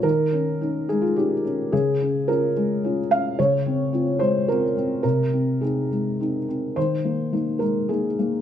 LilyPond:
\new Staff \with { instrumentName = "Felt piano" } { \time 3/4 \key ees \mixolydian \tempo 4 = 107 << { bes'4. aes'16 f'16 g'4 | aes'4 bes'4. f''8 | des''4. c''8 bes'4 | bes'4 aes'4 r4 |
c''4. bes'8 aes'4 | } \\ { ees8 des'8 <des' ees'>8 aes8 <des' ees'>8 des'8 | des8 des'8 <des' f'>8 aes8 <des' f'>8 des'8 | des8 c'8 <c' f'>8 aes8 <c' f'>8 c'8 | c8 c'8 <c' ees'>8 aes8 <c' ees'>8 c'8 |
ees8 bes8 <bes ees'>8 aes8 <bes ees'>8 bes8 | } >> }